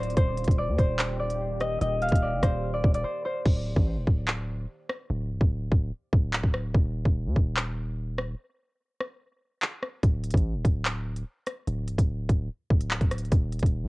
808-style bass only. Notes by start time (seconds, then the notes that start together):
Already playing: D1
0.17 D#1
0.48 D#1
0.68 D#2
0.78 D#1
1.81 D#1
2.12 D#1
2.33 F1
2.43 D#1
2.84 D#1
3.46 D1
3.76 A1
3.97 D#1
4.07 D1
5.10 D1
5.31 C1
5.41 D1
5.72 D1
6.13 D1
6.43 D1
6.74 D#1
7.05 D#1
7.26 D#2
7.36 D#1
10.03 D1
10.34 A1
10.55 D#1
10.65 D1
11.68 D1
11.88 C1
11.98 D1
12.29 D1
12.70 D1
13.01 D1
13.32 D#1
13.63 D#1
13.83 D#2